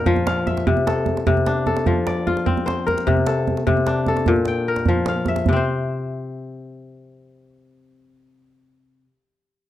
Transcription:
0.00 0.72 A#2 medium
0.00 0.74 D4 medium
0.00 0.93 A#4 medium
0.00 0.59 G5 medium
0.06 0.72 F3 medium
0.06 djembe bass medium
0.16 djembe tone medium
0.27 1.27 F5 medium
0.27 djembe slap medium
0.47 1.50 E5 medium
0.47 djembe slap soft
0.47 djembe tone medium
0.57 djembe slap medium
0.67 1.26 C3 medium
0.67 djembe bass medium
0.77 djembe tone medium
0.87 1.66 A4 medium
0.87 djembe slap medium
1.06 djembe tone medium
1.17 djembe slap medium
1.27 1.92 C3 medium
1.27 djembe bass medium
1.37 djembe tone medium
1.46 3.15 D4 medium
1.46 djembe slap medium
1.57 djembe slap soft
1.67 2.93 A4 medium
1.67 djembe tone medium
1.76 djembe slap medium
1.86 3.12 F3 medium
1.86 djembe bass medium
2.07 3.18 D5 medium
2.07 djembe slap medium
2.27 3.78 F4 medium
2.27 djembe tone medium
2.37 djembe slap soft
2.46 4.26 C4 medium
2.46 djembe bass medium
2.57 djembe tone medium
2.66 3.85 C5 medium
2.66 djembe slap medium
2.87 3.33 A#4 medium
2.87 djembe slap soft
2.87 djembe tone medium
2.98 djembe slap medium
3.07 3.66 C3 medium
3.07 djembe bass medium
3.17 djembe tone soft
3.27 4.08 A4 medium
3.27 djembe slap medium
3.47 djembe tone medium
3.57 djembe slap soft
3.67 4.32 C3 medium
3.67 djembe bass medium
3.77 djembe slap soft
3.77 djembe tone soft
3.87 5.55 D4 medium
3.87 djembe slap medium
3.97 djembe slap soft
4.06 4.74 A4 medium
4.06 djembe tone medium
4.17 djembe slap medium
4.26 5.52 A#2 medium
4.26 djembe bass medium
4.36 djembe slap soft
4.36 djembe tone soft
4.45 5.41 G5 medium
4.45 djembe slap medium
4.68 5.95 A#4 medium
4.76 djembe slap medium
4.86 5.52 F3 medium
4.86 djembe bass medium
5.06 6.08 F5 medium
5.06 djembe slap medium
5.16 djembe slap soft
5.26 6.32 E5 medium
5.26 djembe tone medium
5.36 djembe slap medium
5.46 9.03 C3 medium
5.46 djembe bass medium
5.53 9.07 C4 medium
5.53 9.11 C5 medium

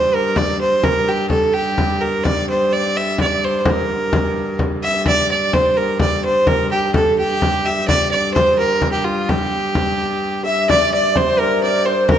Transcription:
0.00 5.06 G2 medium
0.00 0.16 C5 medium
0.14 0.38 A#4 medium
0.36 0.60 D5 medium
0.36 frame drum medium
0.61 0.85 C5 medium
0.84 1.10 A#4 medium
0.84 frame drum medium
1.08 1.29 G4 medium
1.30 1.55 A4 medium
1.30 frame drum medium
1.53 2.02 G4 medium
1.78 frame drum medium
2.01 2.25 A#4 medium
2.24 2.48 D5 medium
2.24 frame drum medium
2.49 2.74 C5 medium
2.73 2.99 D5 medium
2.97 3.20 E5 medium
3.18 3.46 D5 medium
3.18 frame drum medium
3.44 3.58 C5 medium
3.58 3.72 C5 medium
3.65 frame drum medium
3.70 4.62 A#4 medium
3.90 frame drum soft
4.13 frame drum medium
4.36 frame drum soft
4.59 frame drum medium
4.82 5.05 E5 medium
4.82 frame drum soft
5.06 10.71 G2 medium
5.06 5.29 D5 medium
5.06 frame drum medium
5.31 5.55 D5 medium
5.53 5.78 C5 medium
5.53 frame drum medium
5.77 6.00 A#4 medium
6.00 6.22 D5 medium
6.00 frame drum medium
6.25 6.49 C5 medium
6.47 6.71 A#4 medium
6.47 frame drum medium
6.71 6.93 G4 medium
6.94 7.16 A4 medium
6.94 frame drum medium
7.19 7.67 G4 medium
7.42 frame drum medium
7.65 7.87 E5 medium
7.88 8.10 D5 medium
7.88 frame drum medium
8.11 8.33 D5 medium
8.34 8.56 C5 medium
8.34 frame drum medium
8.59 8.91 A#4 medium
8.82 frame drum medium
8.92 9.06 G4 medium
9.04 9.30 F4 medium
9.28 10.44 G4 medium
9.28 frame drum medium
9.75 frame drum medium
10.45 10.67 E5 medium
10.45 12.19 E5 medium
10.45 10.71 E5 medium
10.69 12.19 G2 medium
10.69 10.92 D5 medium
10.69 10.91 D5 medium
10.69 frame drum medium
10.92 11.63 D5 medium
10.92 11.14 D5 medium
10.92 11.18 D5 medium
11.16 11.38 C5 medium
11.16 11.87 C5 medium
11.16 11.40 C5 medium
11.16 frame drum medium
11.39 11.62 A#4 medium
11.39 12.09 A#4 medium
11.39 11.84 A#4 medium
11.63 11.87 D5 medium
11.63 12.19 D5 medium
11.86 12.09 C5 medium
11.86 12.08 C5 medium
11.86 12.19 C5 medium
12.09 12.19 A#4 medium
12.09 frame drum medium

